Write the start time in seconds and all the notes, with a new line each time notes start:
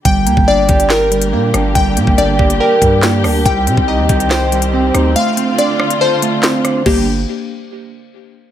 0.05 G1 D3 G3 A#3 G4 G5, kick, closed hi-hat
0.26 D2 A#3, closed hi-hat
0.37 G1, kick
0.48 D4 D5
0.69 G1 G4, kick, closed hi-hat
0.80 closed hi-hat
0.90 A#4 G5, snare, clap
1.11 G3, closed hi-hat
1.22 closed hi-hat
1.33 A#2 A#3
1.54 G1 D4, cross-stick, closed hi-hat
1.75 G1 G3 G5, kick, closed hi-hat
1.97 A#2 A#3, closed hi-hat
2.07 G1, kick
2.18 G1 D4 D5, closed hi-hat
2.39 G1 G4, kick
2.50 closed hi-hat
2.60 A#4 G5
2.82 G2 G3, kick, closed hi-hat
3.02 A#3, snare, clap, closed hi-hat
3.24 D2 D4, cross-stick, open hi-hat
3.46 C2 D#3 G3 C4 G5, kick, closed hi-hat
3.67 C3 C4, closed hi-hat
3.77 C2, kick
3.88 D#4 D#5
3.99 D#2
4.09 C2 G4, kick, closed hi-hat
4.20 closed hi-hat
4.30 C5 G5, snare, clap
4.52 G3, closed hi-hat
4.62 closed hi-hat
4.73 C4
4.94 D2 D#4, cross-stick, closed hi-hat
5.16 D3 A3 F4 F5, closed hi-hat
5.37 C4, closed hi-hat
5.58 D4 D5, closed hi-hat
5.80 F4, cross-stick
5.90 closed hi-hat
6.01 A4 C5
6.22 A3, closed hi-hat
6.43 C4, snare, clap, closed hi-hat
6.65 D4, cross-stick, closed hi-hat
6.86 G1 D3 G3 A#3 D4 G4, kick, crash